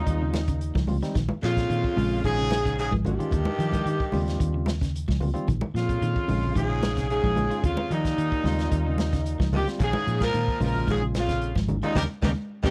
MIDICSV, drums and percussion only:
0, 0, Header, 1, 2, 480
1, 0, Start_track
1, 0, Tempo, 540054
1, 1021, Time_signature, 4, 2, 24, 8
1, 11292, End_track
2, 0, Start_track
2, 0, Title_t, "Drums"
2, 59, Note_on_c, 9, 36, 69
2, 59, Note_on_c, 9, 42, 73
2, 148, Note_off_c, 9, 36, 0
2, 148, Note_off_c, 9, 42, 0
2, 299, Note_on_c, 9, 63, 95
2, 302, Note_on_c, 9, 42, 55
2, 307, Note_on_c, 9, 38, 66
2, 388, Note_off_c, 9, 63, 0
2, 391, Note_off_c, 9, 42, 0
2, 395, Note_off_c, 9, 38, 0
2, 423, Note_on_c, 9, 42, 58
2, 427, Note_on_c, 9, 36, 74
2, 512, Note_off_c, 9, 42, 0
2, 516, Note_off_c, 9, 36, 0
2, 542, Note_on_c, 9, 42, 76
2, 631, Note_off_c, 9, 42, 0
2, 666, Note_on_c, 9, 63, 79
2, 670, Note_on_c, 9, 36, 71
2, 679, Note_on_c, 9, 38, 28
2, 755, Note_off_c, 9, 63, 0
2, 759, Note_off_c, 9, 36, 0
2, 768, Note_off_c, 9, 38, 0
2, 776, Note_on_c, 9, 63, 71
2, 776, Note_on_c, 9, 64, 84
2, 784, Note_on_c, 9, 46, 61
2, 865, Note_off_c, 9, 63, 0
2, 865, Note_off_c, 9, 64, 0
2, 873, Note_off_c, 9, 46, 0
2, 913, Note_on_c, 9, 42, 44
2, 918, Note_on_c, 9, 38, 26
2, 1002, Note_off_c, 9, 42, 0
2, 1006, Note_off_c, 9, 38, 0
2, 1022, Note_on_c, 9, 64, 71
2, 1026, Note_on_c, 9, 36, 86
2, 1026, Note_on_c, 9, 42, 63
2, 1031, Note_on_c, 9, 38, 28
2, 1111, Note_off_c, 9, 64, 0
2, 1115, Note_off_c, 9, 36, 0
2, 1115, Note_off_c, 9, 42, 0
2, 1120, Note_off_c, 9, 38, 0
2, 1143, Note_on_c, 9, 63, 96
2, 1232, Note_off_c, 9, 63, 0
2, 1273, Note_on_c, 9, 42, 59
2, 1277, Note_on_c, 9, 38, 29
2, 1362, Note_off_c, 9, 42, 0
2, 1366, Note_off_c, 9, 38, 0
2, 1395, Note_on_c, 9, 36, 67
2, 1398, Note_on_c, 9, 42, 46
2, 1402, Note_on_c, 9, 38, 25
2, 1484, Note_off_c, 9, 36, 0
2, 1487, Note_off_c, 9, 42, 0
2, 1491, Note_off_c, 9, 38, 0
2, 1513, Note_on_c, 9, 42, 64
2, 1602, Note_off_c, 9, 42, 0
2, 1637, Note_on_c, 9, 36, 71
2, 1726, Note_off_c, 9, 36, 0
2, 1749, Note_on_c, 9, 63, 86
2, 1760, Note_on_c, 9, 46, 69
2, 1838, Note_off_c, 9, 63, 0
2, 1849, Note_off_c, 9, 46, 0
2, 1993, Note_on_c, 9, 36, 63
2, 2000, Note_on_c, 9, 42, 68
2, 2082, Note_off_c, 9, 36, 0
2, 2089, Note_off_c, 9, 42, 0
2, 2227, Note_on_c, 9, 63, 93
2, 2233, Note_on_c, 9, 42, 50
2, 2238, Note_on_c, 9, 38, 75
2, 2316, Note_off_c, 9, 63, 0
2, 2322, Note_off_c, 9, 42, 0
2, 2327, Note_off_c, 9, 38, 0
2, 2359, Note_on_c, 9, 36, 71
2, 2366, Note_on_c, 9, 42, 55
2, 2448, Note_off_c, 9, 36, 0
2, 2454, Note_off_c, 9, 42, 0
2, 2480, Note_on_c, 9, 42, 70
2, 2569, Note_off_c, 9, 42, 0
2, 2591, Note_on_c, 9, 63, 77
2, 2600, Note_on_c, 9, 36, 68
2, 2680, Note_off_c, 9, 63, 0
2, 2689, Note_off_c, 9, 36, 0
2, 2709, Note_on_c, 9, 63, 81
2, 2709, Note_on_c, 9, 64, 91
2, 2720, Note_on_c, 9, 42, 53
2, 2797, Note_off_c, 9, 63, 0
2, 2797, Note_off_c, 9, 64, 0
2, 2809, Note_off_c, 9, 42, 0
2, 2846, Note_on_c, 9, 42, 49
2, 2935, Note_off_c, 9, 42, 0
2, 2944, Note_on_c, 9, 64, 78
2, 2953, Note_on_c, 9, 36, 94
2, 2955, Note_on_c, 9, 42, 63
2, 3033, Note_off_c, 9, 64, 0
2, 3042, Note_off_c, 9, 36, 0
2, 3044, Note_off_c, 9, 42, 0
2, 3069, Note_on_c, 9, 63, 104
2, 3158, Note_off_c, 9, 63, 0
2, 3197, Note_on_c, 9, 42, 61
2, 3286, Note_off_c, 9, 42, 0
2, 3307, Note_on_c, 9, 63, 72
2, 3318, Note_on_c, 9, 36, 62
2, 3319, Note_on_c, 9, 42, 55
2, 3396, Note_off_c, 9, 63, 0
2, 3407, Note_off_c, 9, 36, 0
2, 3408, Note_off_c, 9, 42, 0
2, 3436, Note_on_c, 9, 42, 73
2, 3524, Note_off_c, 9, 42, 0
2, 3557, Note_on_c, 9, 36, 72
2, 3645, Note_off_c, 9, 36, 0
2, 3663, Note_on_c, 9, 63, 84
2, 3674, Note_on_c, 9, 46, 72
2, 3752, Note_off_c, 9, 63, 0
2, 3763, Note_off_c, 9, 46, 0
2, 3803, Note_on_c, 9, 42, 58
2, 3807, Note_on_c, 9, 38, 31
2, 3892, Note_off_c, 9, 42, 0
2, 3896, Note_off_c, 9, 38, 0
2, 3913, Note_on_c, 9, 36, 67
2, 3916, Note_on_c, 9, 42, 68
2, 4002, Note_off_c, 9, 36, 0
2, 4005, Note_off_c, 9, 42, 0
2, 4141, Note_on_c, 9, 63, 97
2, 4157, Note_on_c, 9, 42, 48
2, 4161, Note_on_c, 9, 38, 71
2, 4230, Note_off_c, 9, 63, 0
2, 4245, Note_off_c, 9, 42, 0
2, 4250, Note_off_c, 9, 38, 0
2, 4279, Note_on_c, 9, 36, 71
2, 4287, Note_on_c, 9, 42, 52
2, 4291, Note_on_c, 9, 38, 30
2, 4368, Note_off_c, 9, 36, 0
2, 4376, Note_off_c, 9, 42, 0
2, 4380, Note_off_c, 9, 38, 0
2, 4405, Note_on_c, 9, 42, 77
2, 4494, Note_off_c, 9, 42, 0
2, 4514, Note_on_c, 9, 63, 71
2, 4520, Note_on_c, 9, 36, 66
2, 4531, Note_on_c, 9, 38, 28
2, 4603, Note_off_c, 9, 63, 0
2, 4608, Note_off_c, 9, 36, 0
2, 4619, Note_off_c, 9, 38, 0
2, 4628, Note_on_c, 9, 63, 76
2, 4628, Note_on_c, 9, 64, 90
2, 4639, Note_on_c, 9, 46, 58
2, 4717, Note_off_c, 9, 63, 0
2, 4717, Note_off_c, 9, 64, 0
2, 4728, Note_off_c, 9, 46, 0
2, 4767, Note_on_c, 9, 42, 47
2, 4856, Note_off_c, 9, 42, 0
2, 4867, Note_on_c, 9, 64, 78
2, 4873, Note_on_c, 9, 36, 88
2, 4882, Note_on_c, 9, 42, 63
2, 4956, Note_off_c, 9, 64, 0
2, 4961, Note_off_c, 9, 36, 0
2, 4971, Note_off_c, 9, 42, 0
2, 4988, Note_on_c, 9, 63, 97
2, 5077, Note_off_c, 9, 63, 0
2, 5120, Note_on_c, 9, 42, 57
2, 5125, Note_on_c, 9, 38, 30
2, 5209, Note_off_c, 9, 42, 0
2, 5214, Note_off_c, 9, 38, 0
2, 5237, Note_on_c, 9, 36, 62
2, 5241, Note_on_c, 9, 42, 50
2, 5326, Note_off_c, 9, 36, 0
2, 5330, Note_off_c, 9, 42, 0
2, 5351, Note_on_c, 9, 42, 67
2, 5440, Note_off_c, 9, 42, 0
2, 5474, Note_on_c, 9, 36, 70
2, 5563, Note_off_c, 9, 36, 0
2, 5587, Note_on_c, 9, 63, 85
2, 5588, Note_on_c, 9, 46, 67
2, 5676, Note_off_c, 9, 63, 0
2, 5677, Note_off_c, 9, 46, 0
2, 5715, Note_on_c, 9, 64, 65
2, 5804, Note_off_c, 9, 64, 0
2, 5825, Note_on_c, 9, 63, 68
2, 5828, Note_on_c, 9, 36, 61
2, 5833, Note_on_c, 9, 42, 67
2, 5914, Note_off_c, 9, 63, 0
2, 5917, Note_off_c, 9, 36, 0
2, 5922, Note_off_c, 9, 42, 0
2, 6068, Note_on_c, 9, 42, 52
2, 6068, Note_on_c, 9, 63, 93
2, 6073, Note_on_c, 9, 38, 79
2, 6156, Note_off_c, 9, 63, 0
2, 6157, Note_off_c, 9, 42, 0
2, 6162, Note_off_c, 9, 38, 0
2, 6194, Note_on_c, 9, 36, 69
2, 6194, Note_on_c, 9, 42, 55
2, 6198, Note_on_c, 9, 38, 29
2, 6283, Note_off_c, 9, 36, 0
2, 6283, Note_off_c, 9, 42, 0
2, 6287, Note_off_c, 9, 38, 0
2, 6311, Note_on_c, 9, 42, 66
2, 6400, Note_off_c, 9, 42, 0
2, 6432, Note_on_c, 9, 36, 65
2, 6432, Note_on_c, 9, 63, 75
2, 6521, Note_off_c, 9, 36, 0
2, 6521, Note_off_c, 9, 63, 0
2, 6544, Note_on_c, 9, 63, 72
2, 6544, Note_on_c, 9, 64, 95
2, 6551, Note_on_c, 9, 42, 49
2, 6633, Note_off_c, 9, 63, 0
2, 6633, Note_off_c, 9, 64, 0
2, 6640, Note_off_c, 9, 42, 0
2, 6676, Note_on_c, 9, 42, 45
2, 6765, Note_off_c, 9, 42, 0
2, 6786, Note_on_c, 9, 64, 71
2, 6787, Note_on_c, 9, 36, 91
2, 6789, Note_on_c, 9, 42, 74
2, 6875, Note_off_c, 9, 64, 0
2, 6876, Note_off_c, 9, 36, 0
2, 6878, Note_off_c, 9, 42, 0
2, 6907, Note_on_c, 9, 63, 102
2, 6995, Note_off_c, 9, 63, 0
2, 7031, Note_on_c, 9, 42, 60
2, 7120, Note_off_c, 9, 42, 0
2, 7154, Note_on_c, 9, 36, 57
2, 7156, Note_on_c, 9, 42, 55
2, 7161, Note_on_c, 9, 38, 25
2, 7243, Note_off_c, 9, 36, 0
2, 7245, Note_off_c, 9, 42, 0
2, 7249, Note_off_c, 9, 38, 0
2, 7272, Note_on_c, 9, 42, 67
2, 7361, Note_off_c, 9, 42, 0
2, 7395, Note_on_c, 9, 36, 65
2, 7484, Note_off_c, 9, 36, 0
2, 7501, Note_on_c, 9, 63, 81
2, 7513, Note_on_c, 9, 46, 64
2, 7518, Note_on_c, 9, 38, 29
2, 7590, Note_off_c, 9, 63, 0
2, 7602, Note_off_c, 9, 46, 0
2, 7607, Note_off_c, 9, 38, 0
2, 7633, Note_on_c, 9, 42, 59
2, 7638, Note_on_c, 9, 38, 31
2, 7722, Note_off_c, 9, 42, 0
2, 7727, Note_off_c, 9, 38, 0
2, 7746, Note_on_c, 9, 42, 74
2, 7747, Note_on_c, 9, 36, 62
2, 7835, Note_off_c, 9, 42, 0
2, 7836, Note_off_c, 9, 36, 0
2, 7983, Note_on_c, 9, 63, 91
2, 7990, Note_on_c, 9, 42, 54
2, 7994, Note_on_c, 9, 38, 73
2, 8071, Note_off_c, 9, 63, 0
2, 8078, Note_off_c, 9, 42, 0
2, 8083, Note_off_c, 9, 38, 0
2, 8114, Note_on_c, 9, 36, 71
2, 8116, Note_on_c, 9, 42, 55
2, 8121, Note_on_c, 9, 38, 29
2, 8203, Note_off_c, 9, 36, 0
2, 8205, Note_off_c, 9, 42, 0
2, 8210, Note_off_c, 9, 38, 0
2, 8228, Note_on_c, 9, 42, 76
2, 8316, Note_off_c, 9, 42, 0
2, 8351, Note_on_c, 9, 63, 71
2, 8353, Note_on_c, 9, 36, 70
2, 8358, Note_on_c, 9, 38, 28
2, 8440, Note_off_c, 9, 63, 0
2, 8442, Note_off_c, 9, 36, 0
2, 8447, Note_off_c, 9, 38, 0
2, 8469, Note_on_c, 9, 63, 69
2, 8469, Note_on_c, 9, 64, 93
2, 8470, Note_on_c, 9, 46, 52
2, 8558, Note_off_c, 9, 63, 0
2, 8558, Note_off_c, 9, 64, 0
2, 8559, Note_off_c, 9, 46, 0
2, 8598, Note_on_c, 9, 42, 50
2, 8602, Note_on_c, 9, 38, 28
2, 8687, Note_off_c, 9, 42, 0
2, 8691, Note_off_c, 9, 38, 0
2, 8706, Note_on_c, 9, 64, 68
2, 8711, Note_on_c, 9, 36, 87
2, 8711, Note_on_c, 9, 42, 72
2, 8795, Note_off_c, 9, 64, 0
2, 8799, Note_off_c, 9, 36, 0
2, 8800, Note_off_c, 9, 42, 0
2, 8828, Note_on_c, 9, 63, 104
2, 8917, Note_off_c, 9, 63, 0
2, 8954, Note_on_c, 9, 42, 64
2, 9043, Note_off_c, 9, 42, 0
2, 9070, Note_on_c, 9, 63, 75
2, 9075, Note_on_c, 9, 36, 67
2, 9079, Note_on_c, 9, 42, 52
2, 9083, Note_on_c, 9, 38, 25
2, 9159, Note_off_c, 9, 63, 0
2, 9164, Note_off_c, 9, 36, 0
2, 9167, Note_off_c, 9, 42, 0
2, 9172, Note_off_c, 9, 38, 0
2, 9188, Note_on_c, 9, 42, 72
2, 9277, Note_off_c, 9, 42, 0
2, 9316, Note_on_c, 9, 36, 71
2, 9404, Note_off_c, 9, 36, 0
2, 9427, Note_on_c, 9, 63, 89
2, 9431, Note_on_c, 9, 46, 67
2, 9515, Note_off_c, 9, 63, 0
2, 9520, Note_off_c, 9, 46, 0
2, 9555, Note_on_c, 9, 64, 68
2, 9644, Note_off_c, 9, 64, 0
2, 9663, Note_on_c, 9, 63, 70
2, 9668, Note_on_c, 9, 36, 60
2, 9671, Note_on_c, 9, 42, 66
2, 9752, Note_off_c, 9, 63, 0
2, 9757, Note_off_c, 9, 36, 0
2, 9760, Note_off_c, 9, 42, 0
2, 9905, Note_on_c, 9, 42, 52
2, 9909, Note_on_c, 9, 38, 71
2, 9910, Note_on_c, 9, 63, 92
2, 9994, Note_off_c, 9, 42, 0
2, 9998, Note_off_c, 9, 38, 0
2, 9998, Note_off_c, 9, 63, 0
2, 10032, Note_on_c, 9, 42, 50
2, 10033, Note_on_c, 9, 36, 69
2, 10037, Note_on_c, 9, 38, 28
2, 10121, Note_off_c, 9, 36, 0
2, 10121, Note_off_c, 9, 42, 0
2, 10126, Note_off_c, 9, 38, 0
2, 10146, Note_on_c, 9, 42, 70
2, 10235, Note_off_c, 9, 42, 0
2, 10269, Note_on_c, 9, 63, 77
2, 10272, Note_on_c, 9, 36, 70
2, 10278, Note_on_c, 9, 38, 29
2, 10358, Note_off_c, 9, 63, 0
2, 10360, Note_off_c, 9, 36, 0
2, 10367, Note_off_c, 9, 38, 0
2, 10385, Note_on_c, 9, 42, 43
2, 10385, Note_on_c, 9, 63, 81
2, 10385, Note_on_c, 9, 64, 88
2, 10474, Note_off_c, 9, 42, 0
2, 10474, Note_off_c, 9, 63, 0
2, 10474, Note_off_c, 9, 64, 0
2, 10514, Note_on_c, 9, 42, 42
2, 10603, Note_off_c, 9, 42, 0
2, 10620, Note_on_c, 9, 63, 86
2, 10626, Note_on_c, 9, 36, 81
2, 10632, Note_on_c, 9, 38, 79
2, 10709, Note_off_c, 9, 63, 0
2, 10715, Note_off_c, 9, 36, 0
2, 10721, Note_off_c, 9, 38, 0
2, 10865, Note_on_c, 9, 63, 100
2, 10867, Note_on_c, 9, 36, 77
2, 10871, Note_on_c, 9, 38, 86
2, 10954, Note_off_c, 9, 63, 0
2, 10956, Note_off_c, 9, 36, 0
2, 10960, Note_off_c, 9, 38, 0
2, 11232, Note_on_c, 9, 63, 96
2, 11233, Note_on_c, 9, 36, 73
2, 11241, Note_on_c, 9, 38, 74
2, 11292, Note_off_c, 9, 36, 0
2, 11292, Note_off_c, 9, 38, 0
2, 11292, Note_off_c, 9, 63, 0
2, 11292, End_track
0, 0, End_of_file